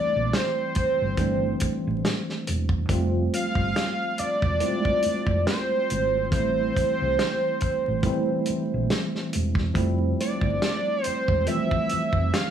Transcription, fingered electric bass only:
0.16 A#1
0.78 muted fingered electric bass stroke
1.02 G1
1.63 muted fingered electric bass stroke
1.87 A1
2.49 E1
2.90 F1
3.57 G1
4.20 muted fingered electric bass stroke
4.44 E1
5.06 muted fingered electric bass stroke
5.28 F1
5.91 G#1
6.33 A1
7.02 C2
7.63 muted fingered electric bass stroke
7.88 A1
8.49 muted fingered electric bass stroke
8.74 A#1
9.35 E1
9.76 F1
10.43 G1
11.07 muted fingered electric bass stroke
11.29 E1
11.93 muted fingered electric bass stroke
12.14 F1

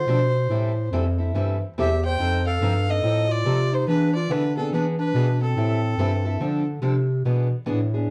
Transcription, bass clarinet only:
0.07 B2
0.49 A2
0.91 F2
1.34 G2
1.76 E2
2.18 F2
2.60 G2
3.03 A2
3.45 C3
3.87 E3
4.29 D3
4.72 E3
5.14 B2
5.56 A2
5.97 G2
6.40 D3
6.81 C3
7.25 B2
7.67 A2

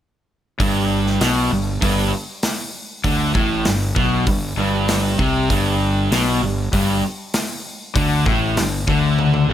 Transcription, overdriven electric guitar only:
0.60 G2
1.22 B2
1.52 G2
1.82 G2
3.05 D3
3.34 A2
3.65 G2
3.96 B2
4.26 G2
4.58 G2
5.19 C3
5.49 G2
6.12 B2
6.42 G2
6.73 G2
7.95 D3
8.26 A2
8.57 G2
8.89 D3
9.50 G2

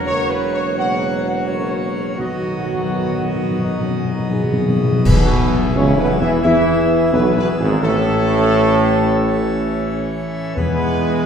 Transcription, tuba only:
Already playing: E1
2.19 B1
5.06 B1
5.75 C#2
5.97 B1
6.20 E2
6.44 E2
7.13 B1
7.36 B1
7.60 G#1
7.83 A1
10.57 E2

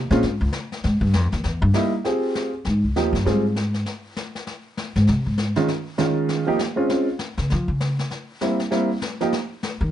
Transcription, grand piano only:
0.11 G#3 C4 C#4 F4
1.74 G3 A#3 D#4 E4
2.04 C4 F4 G4 G#4
2.96 F3 A#3 D#4 G4
3.25 G3 C4 F4 G#4
5.56 D#3 G#3 C#4 F4
5.98 D#3 G#3 C#4 F4
6.46 F3 A#3 D#4 G4
6.76 G#3 C4 C#4 F4
6.89 G#3 C4 C#4 F4
8.41 G3 A#3 C4 E4
8.71 G3 A#3 C4 E4
9.21 F3 A#3 D#4 G4

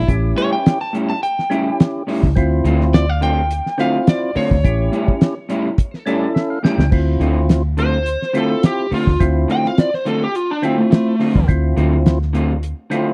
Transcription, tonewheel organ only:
0.08 C#4 E4 G4
1.50 C#4 E4 G4
2.36 C4 E4 F4
3.78 C4 E4 F4
4.64 C#4 E4 G4
6.06 C#4 E4 A4 D5
6.35 E5
6.50 F5
6.64 G5
6.91 C4 E4 F4
8.34 C4 E4 F4
9.20 C4 E4 F4
10.63 C4 E4 F4
11.48 C4 E4 F4
12.91 C4 E4 F4

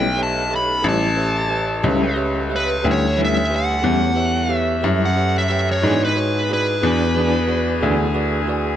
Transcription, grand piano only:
Already playing: B1
0.84 A1
1.84 C#2
2.84 D2
3.84 E2
4.84 F#2
5.83 G#2
6.83 E2
7.83 D2

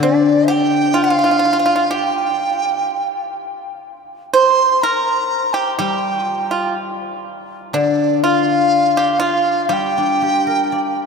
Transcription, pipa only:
0.03 D4
0.48 G4
0.94 F4
1.04 F4
1.10 F4
1.19 F4
1.24 F4
1.31 F4
1.39 F4
1.45 F4
1.53 F4
1.59 F4
1.66 F4
1.76 F4
1.91 G4
4.33 C5
4.83 A#4
5.54 G4
5.79 G4
6.23 F4
6.51 F4
7.74 D4
8.24 F4
8.97 G4
9.20 F4
9.69 G4

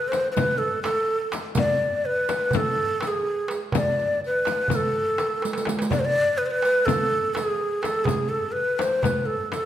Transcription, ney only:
0.08 C5
0.32 B4 C5
0.58 A4
0.83 A4
1.58 D5
2.06 B4
2.56 A4
3.07 G#4
3.77 D5
4.26 B4
4.75 A4
5.91 D5
5.99 C5
6.05 D5
6.38 B4
6.46 C5
6.51 B4
6.86 A4
7.34 A4
7.46 G#4
7.82 A4
8.04 G#4
8.29 A4
8.52 B4
8.79 C5
9.03 B4
9.26 A4
9.53 A4

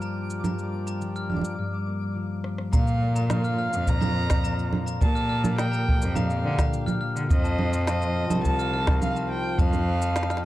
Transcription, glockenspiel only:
0.02 A#5
0.45 A#5
0.87 A#5
1.16 F6
1.30 F6
2.73 A#5
3.16 A#5
3.45 F6
3.59 F6
4.01 A#5
4.44 A#5
4.86 A#5
5.15 F6
5.29 F6
5.72 A#5
6.15 A#5
6.58 A#5
6.86 F6
7.01 F6
7.44 A5
7.87 A5
8.30 A5
8.59 F6
8.73 F6
9.16 A5
9.59 A5
10.02 A5
10.31 F6

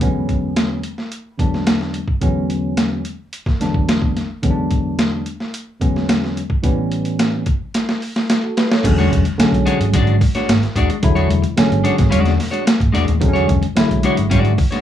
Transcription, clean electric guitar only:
8.84 muted clean electric guitar stroke
8.98 G#3 D4 F#4 C#5
9.11 muted clean electric guitar stroke
9.25 muted clean electric guitar stroke
9.53 muted clean electric guitar stroke
9.66 G#3 D4 F#4 C#5
9.79 muted clean electric guitar stroke
9.94 G#3 D4 F#4 D5
10.21 muted clean electric guitar stroke
10.35 G#3 D4 F#4 C#5
10.62 muted clean electric guitar stroke
10.76 G#3 D4 F#4 D5
10.90 muted clean electric guitar stroke
11.03 muted clean electric guitar stroke
11.15 G#3 D4 F#4 C#5
11.30 muted clean electric guitar stroke
11.42 muted clean electric guitar stroke
11.70 muted clean electric guitar stroke
11.84 G#3 D4 F#4 C#5
11.96 muted clean electric guitar stroke
12.10 G#3 D4 F#4 D5
12.37 muted clean electric guitar stroke
12.51 G#3 D4 F#4 C#5
12.65 muted clean electric guitar stroke
12.78 muted clean electric guitar stroke
12.92 G#3 D4 F#4 D5
13.06 muted clean electric guitar stroke
13.20 muted clean electric guitar stroke
13.33 G#3 D4 F#4 C#5
13.47 muted clean electric guitar stroke
13.62 muted clean electric guitar stroke
13.90 muted clean electric guitar stroke
14.04 G#3 D4 F#4 C#5
14.17 muted clean electric guitar stroke
14.30 G#3 D4 F#4 D5
14.58 muted clean electric guitar stroke
14.71 G#3 D4 F#4 C#5

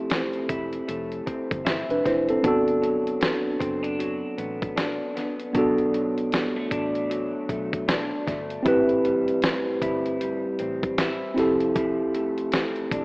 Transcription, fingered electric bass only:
0.49 E1
0.89 F1
1.27 muted fingered electric bass stroke
1.51 G1
1.89 F1
2.05 F1
2.44 G1
3.60 F#1
4.38 A1
5.55 B1
6.71 A1
7.49 B1
8.27 G1
8.66 A1
9.82 G1
10.60 A1
11.37 F1
12.91 E1

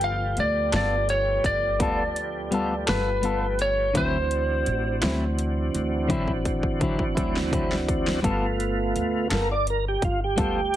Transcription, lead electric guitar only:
0.04 F5
0.40 D5
0.76 D5
1.10 C#5
1.46 D5
2.89 B4
3.62 C#5
3.97 C5

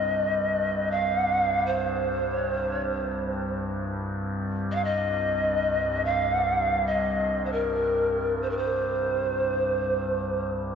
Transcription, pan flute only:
Already playing: D#5
0.91 F5
1.66 C5
2.33 C#5
2.51 C5
2.71 C#5
2.89 C5
4.71 D#5 F5
4.84 D#5
6.05 F5
6.86 D#5
7.45 C5
7.52 A#4
8.42 C5
8.50 A#4
8.57 C5

